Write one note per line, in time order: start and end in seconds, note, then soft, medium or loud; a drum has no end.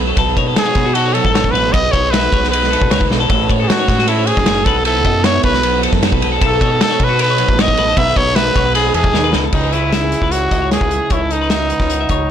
0.00 0.14 B1 medium
0.00 0.15 B2 medium
0.00 1.15 F#3 medium
0.00 0.57 F#4 medium
0.00 0.17 A4 medium
0.07 0.17 A4 medium
0.16 0.34 B1 medium
0.16 1.71 B2 medium
0.16 0.37 A4 medium
0.16 1.74 B4 medium
0.16 kick loud
0.16 ride medium
0.37 0.54 B2 medium
0.37 0.96 D#4 medium
0.37 0.47 C#5 medium
0.37 kick medium
0.37 ride medium
0.47 0.66 A4 medium
0.56 0.76 F#4 medium
0.56 0.96 G#4 medium
0.56 snare loud
0.56 ride medium
0.66 0.86 C#5 medium
0.75 1.19 B2 medium
0.75 2.33 B3 medium
0.75 1.16 F#4 medium
0.75 kick medium
0.75 snare soft
0.75 ride medium
0.85 0.96 F#4 medium
0.94 1.72 D#4 medium
0.94 1.15 F#4 medium
0.94 1.06 A4 medium
0.94 ride medium
1.06 1.25 C#5 medium
1.13 2.36 F#3 medium
1.13 1.56 F#4 medium
1.13 1.53 A4 medium
1.13 ride medium
1.25 1.51 A1 medium
1.25 1.34 A4 medium
1.25 kick medium
1.34 1.53 C#5 medium
1.34 snare loud
1.34 ride medium
1.44 kick medium
1.51 1.71 A1 medium
1.51 1.74 B4 medium
1.51 1.63 B4 medium
1.51 ride medium
1.56 2.14 F#4 medium
1.63 1.73 A4 medium
1.72 1.91 B1 loud
1.72 2.71 B2 medium
1.72 1.93 B4 medium
1.72 3.11 B4 medium
1.72 1.93 D#5 loud
1.72 kick loud
1.72 ride medium
1.91 2.27 B1 medium
1.91 2.52 D#4 medium
1.91 2.12 C#5 medium
1.91 2.12 D#5 medium
1.91 kick medium
1.91 ride medium
2.11 2.34 F#4 medium
2.11 2.49 B4 medium
2.11 2.32 E5 medium
2.11 snare loud
2.11 ride loud
2.33 2.75 B1 medium
2.33 3.28 G#3 medium
2.33 2.72 F#4 medium
2.33 2.41 C#5 medium
2.33 kick medium
2.33 ride medium
2.41 2.50 B4 medium
2.41 snare soft
2.50 3.28 D#4 medium
2.50 3.05 B4 medium
2.50 2.71 B4 medium
2.50 ride loud
2.63 snare soft
2.71 3.28 B2 medium
2.71 2.82 E4 medium
2.71 2.90 A4 medium
2.71 ride medium
2.82 2.90 B1 medium
2.82 3.30 F#4 medium
2.82 kick medium
2.90 3.08 C#2 medium
2.90 3.01 C#5 medium
2.90 snare loud
2.90 ride loud
3.01 3.20 B4 medium
3.01 kick medium
3.10 3.28 B1 medium
3.10 3.21 A4 medium
3.10 snare medium
3.20 3.29 A4 medium
3.20 3.30 B4 medium
3.30 3.47 A1 medium
3.30 4.47 A2 medium
3.30 3.88 A3 medium
3.30 3.50 C#4 medium
3.30 3.49 A4 medium
3.30 kick loud
3.30 ride medium
3.34 4.68 F#4 medium
3.34 5.25 B4 medium
3.49 3.66 A2 medium
3.49 3.69 C#4 medium
3.49 3.59 C#5 medium
3.49 kick medium
3.49 ride medium
3.60 3.69 G#4 medium
3.60 3.79 A4 medium
3.68 3.88 C#4 medium
3.68 4.10 F#4 medium
3.68 snare loud
3.68 ride medium
3.79 3.98 C#5 medium
3.88 4.31 A2 medium
3.88 4.71 A3 medium
3.88 4.07 C#4 medium
3.88 kick medium
3.88 snare soft
3.88 ride medium
3.99 4.08 F#4 medium
3.99 snare soft
4.08 4.64 C#4 medium
4.08 4.28 E4 medium
4.08 4.18 A4 medium
4.08 ride medium
4.19 4.38 C#5 medium
4.26 4.66 G#4 medium
4.26 ride medium
4.37 4.63 F#1 medium
4.37 4.47 A4 medium
4.37 kick medium
4.37 snare soft
4.46 4.67 A2 medium
4.46 4.66 C#5 medium
4.46 snare loud
4.46 ride medium
4.64 5.05 B1 medium
4.64 6.23 B2 medium
4.64 5.06 F#4 medium
4.64 4.85 A4 medium
4.64 4.77 B4 medium
4.64 kick loud
4.64 ride medium
4.77 4.87 A4 medium
4.85 5.45 E4 medium
4.85 5.26 A4 loud
4.85 5.05 B4 medium
4.85 ride medium
5.05 5.39 F#2 medium
5.05 5.65 F#4 medium
5.05 5.25 D#5 medium
5.05 kick medium
5.05 ride medium
5.24 6.27 B3 medium
5.24 6.03 A4 medium
5.24 5.43 C#5 loud
5.24 5.44 E5 medium
5.24 snare loud
5.24 ride medium
5.43 5.86 B1 medium
5.43 6.21 E4 medium
5.43 5.80 B4 medium
5.43 5.54 C#5 medium
5.43 kick medium
5.43 ride medium
5.54 5.63 B4 medium
5.54 snare soft
5.63 6.47 F#3 medium
5.63 6.43 F#4 medium
5.63 5.83 B4 medium
5.63 ride loud
5.83 6.03 A4 medium
5.83 ride medium
5.92 6.10 F#2 medium
5.92 kick medium
5.92 snare soft
6.03 6.23 A4 medium
6.03 6.12 C#5 medium
6.03 snare loud
6.03 ride medium
6.12 6.38 B1 medium
6.12 6.32 B4 medium
6.12 kick medium
6.22 6.43 B2 medium
6.22 7.01 A4 medium
6.22 ride medium
6.32 6.41 A4 medium
6.42 6.58 B1 loud
6.42 7.96 B2 medium
6.42 6.53 E4 medium
6.42 6.61 A4 medium
6.42 kick loud
6.42 ride loud
6.46 6.80 A4 medium
6.53 6.81 F#4 medium
6.61 6.78 B2 medium
6.61 6.71 C#5 medium
6.61 kick medium
6.61 ride medium
6.66 7.22 D#4 medium
6.71 6.90 A4 medium
6.81 7.39 F#4 medium
6.81 7.05 A4 medium
6.81 snare loud
6.81 ride loud
6.90 7.10 C#5 medium
7.00 7.43 B2 medium
7.00 8.55 B3 medium
7.00 7.77 A4 medium
7.00 kick medium
7.00 ride medium
7.04 7.21 B4 medium
7.09 7.20 F#4 medium
7.19 8.17 D#4 medium
7.19 7.29 A4 medium
7.19 7.62 B4 medium
7.19 ride medium
7.30 7.49 C#5 medium
7.38 8.58 F#3 medium
7.38 8.36 F#4 medium
7.38 ride medium
7.49 7.74 A1 medium
7.49 7.60 A4 medium
7.49 kick medium
7.59 7.78 C#5 medium
7.59 7.99 D#5 medium
7.59 snare loud
7.59 ride medium
7.68 kick medium
7.77 7.96 A1 medium
7.77 7.97 A4 medium
7.77 7.88 B4 medium
7.77 ride medium
7.88 7.97 A4 medium
7.97 8.14 B1 loud
7.97 8.94 B2 medium
7.97 8.17 B4 medium
7.97 9.33 B4 medium
7.97 8.18 E5 loud
7.97 kick loud
7.97 ride medium
8.16 8.51 B1 medium
8.16 8.74 D#4 medium
8.16 8.37 C#5 loud
8.16 8.36 D#5 medium
8.16 kick medium
8.16 ride medium
8.35 8.55 F#4 medium
8.35 8.74 B4 loud
8.35 8.56 E5 medium
8.35 snare loud
8.35 ride loud
8.55 8.90 B1 loud
8.55 9.51 G#3 medium
8.55 8.95 F#4 medium
8.55 8.65 C#5 medium
8.55 kick medium
8.55 ride medium
8.65 8.74 B4 medium
8.75 9.51 D#4 medium
8.75 8.93 G#4 medium
8.75 8.94 B4 medium
8.75 ride medium
8.94 9.12 E2 medium
8.94 9.51 B2 medium
8.94 9.05 E4 medium
8.94 9.31 G#4 medium
8.94 9.14 A4 medium
8.94 ride medium
9.04 9.54 F#4 medium
9.04 kick medium
9.13 9.31 D#2 medium
9.13 9.24 C#5 medium
9.13 snare medium
9.24 9.44 B4 medium
9.33 9.52 C#2 medium
9.33 9.43 A4 medium
9.33 snare medium
9.44 9.53 A4 medium
9.44 9.53 B4 medium
9.52 10.13 C#2 medium
9.52 11.09 C#3 medium
9.52 9.74 D#4 medium
9.52 9.73 G#4 medium
9.52 11.10 B4 medium
9.52 kick medium
9.52 crash medium
9.72 9.94 G#3 soft
9.72 10.33 E4 medium
9.72 9.93 B4 medium
9.72 closed hi-hat soft
9.93 10.13 G#3 medium
9.93 10.03 E5 medium
9.93 snare loud
9.93 closed hi-hat medium
10.03 10.22 G#4 medium
10.12 10.72 G#3 medium
10.12 closed hi-hat medium
10.21 10.48 C#2 medium
10.21 10.32 B4 medium
10.21 kick medium
10.31 10.53 E4 medium
10.31 10.71 F#4 medium
10.31 10.51 C#5 medium
10.31 closed hi-hat medium
10.51 10.78 C#2 medium
10.51 10.93 E4 medium
10.51 10.61 D#5 medium
10.51 kick medium
10.51 closed hi-hat medium
10.62 10.82 C#5 medium
10.71 11.56 G#3 medium
10.71 11.14 G#4 medium
10.71 snare medium
10.71 closed hi-hat medium
10.81 10.99 C#2 medium
10.81 10.92 B4 medium
10.81 kick medium
10.91 11.12 E4 medium
10.91 11.11 G#4 medium
10.91 closed hi-hat soft
11.10 11.72 C#2 medium
11.10 12.30 C#3 medium
11.10 11.32 D#4 medium
11.10 11.33 E4 medium
11.10 11.21 C#5 medium
11.10 kick medium
11.10 closed hi-hat medium
11.21 11.41 A4 medium
11.31 12.31 D#4 medium
11.31 12.11 D#4 soft
11.31 closed hi-hat soft
11.41 11.50 B4 medium
11.50 11.91 F#4 medium
11.50 11.70 E5 medium
11.50 snare loud
11.50 closed hi-hat medium
11.70 12.31 B4 medium
11.70 11.81 D#5 medium
11.70 closed hi-hat medium
11.80 12.06 C#2 medium
11.80 12.00 C#5 medium
11.80 kick medium
11.80 snare soft
11.90 12.31 F#4 medium
11.90 closed hi-hat medium
12.01 12.10 E5 medium
12.09 12.31 C#2 medium
12.09 12.31 D#4 medium
12.09 12.30 C#5 medium
12.09 kick medium
12.09 closed hi-hat medium